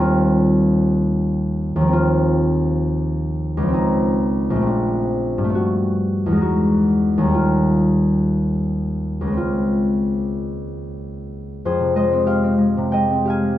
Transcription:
<<
  \new Staff \with { instrumentName = "Harp" } { \time 6/8 \key c \minor \tempo 4. = 63 r2. | r2. | \key f \minor r2. | r2. |
r2. | r2. | <aes' c''>8 <c'' ees''>8 <c'' f''>4 <ees'' g''>8 <f'' aes''>8 | }
  \new Staff \with { instrumentName = "Harp" } { \time 6/8 \key c \minor << { <ees, g c' dis' f'>2. | <ees, f c' f'>2. | \key f \minor <des, f c' ees'>4. <bes,, a c' d'>4. | <g, a b fis'>4. <e, gis dis' fis'>4. |
<ees, g ees' f'>2. | <des, aes c' f'>2.~ | <des, aes c' f'>2. | } \\ { r2. | r2. | r2. | r2. |
r2. | r2. | f,16 c16 aes16 c'16 g'16 c'16 aes16 c16 aes16 c'16 g'16 aes16 | } >> }
>>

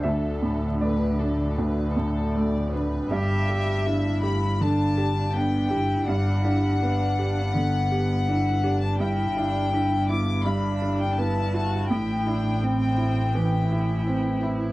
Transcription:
<<
  \new Staff \with { instrumentName = "Violin section" } { \time 4/4 \key g \major \tempo 4 = 82 a'4 b'8 a'8 b'8 a'8 d''8 b'8 | e''4. b''8 a''4 g''4 | fis''2.~ fis''8. a''16 | g''4. d'''8 b''8. g''16 a''4 |
g''2.~ g''8 r8 | }
  \new Staff \with { instrumentName = "Cello" } { \time 4/4 \key g \major d2.~ d8. r16 | g'4 e'4 d'4 b8 e'8 | d'8 e'8 d'4 b4 e'8 d'8 | e'8 d'8 e'8 b8 d'4 e'8 fis'8 |
e'8 d'8 c'4 e'2 | }
  \new Staff \with { instrumentName = "Upright piano" } { \time 4/4 \key g \major << { e''4 d''2 r4 | r1 | r1 | r1 |
r1 | } \\ { <d, d'>8 a,8 a8 d'8 d,8 a,8 a8 d'8 | g,8 g'8 d'8 g'8 d8 g'8 d'8 g'8 | g,8 d'8 b8 g'8 d8 g'8 d'8 g'8 | g,8 e'8 d'8 e'8 g,8 d'8 b8 e'8 |
a,8 e'8 c'8 e'8 e8 e'8 c'8 e'8 | } >> }
  \new Staff \with { instrumentName = "Double bass" } { \clef bass \time 4/4 \key g \major d,1 | g,,1 | g,,1~ | g,,1 |
a,,1 | }
>>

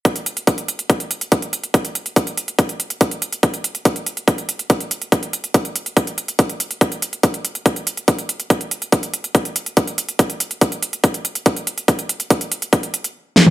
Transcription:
\new DrumStaff \with { instrumentName = "Drums" } \drummode { \time 4/4 \tempo 4 = 142 <hh bd>16 hh16 hh16 hh16 <hh bd>16 hh16 hh16 hh16 <hh bd>16 hh16 hh16 hh16 <hh bd>16 hh16 hh16 hh16 | <hh bd>16 hh16 hh16 hh16 <hh bd>16 hh16 hh16 hh16 <hh bd>16 hh16 hh16 hh16 <hh bd>16 hh16 hh16 hh16 | <hh bd>16 hh16 hh16 hh16 <hh bd>16 hh16 hh16 hh16 <hh bd>16 hh16 hh16 hh16 <hh bd>16 hh16 hh16 hh16 | <hh bd>16 hh16 hh16 hh16 <hh bd>16 hh16 hh16 hh16 <hh bd>16 hh16 hh16 hh16 <hh bd>16 hh16 hh16 hh16 |
<hh bd>16 hh16 hh16 hh16 <hh bd>16 hh16 hh16 hh16 <hh bd>16 hh16 hh16 hh16 <hh bd>16 hh16 hh16 hh16 | <hh bd>16 hh16 hh16 hh16 <hh bd>16 hh16 hh16 hh16 <hh bd>16 hh16 hh16 hh16 <hh bd>16 hh16 hh16 hh16 | <hh bd>16 hh16 hh16 hh16 <hh bd>16 hh16 hh16 hh16 <hh bd>16 hh16 hh16 hh16 <hh bd>16 hh16 hh16 hh16 | <hh bd>16 hh16 hh16 hh16 <hh bd>16 hh16 hh16 hh16 <hh bd>16 hh16 hh16 hh16 r8 sn16 toml16 | }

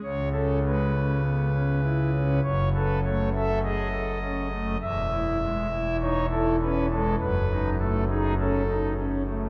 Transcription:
<<
  \new Staff \with { instrumentName = "Pipe organ" } { \time 4/4 \key cis \minor \tempo 4 = 50 << { cis''16 a'16 b'4. cis''16 b'16 cis''16 e''16 dis''4 | e''4 cis''16 a'16 b'16 a'16 b'8 a'16 gis'16 a'8 r8 | } \\ { cis16 cis'16 gis16 cis'16 b16 cis'16 e'16 cis'16 fis,16 a'16 a16 a'16 gis'16 a'16 cis'16 a16 | e,16 e'16 gis16 e'16 dis'16 e'16 cis'16 gis16 fis,16 dis'16 a16 dis'16 cis'16 dis'16 cis'16 a16 | } >> }
  \new Staff \with { instrumentName = "Pipe organ" } { \clef bass \time 4/4 \key cis \minor cis,2 fis,,2 | e,,2 fis,,2 | }
>>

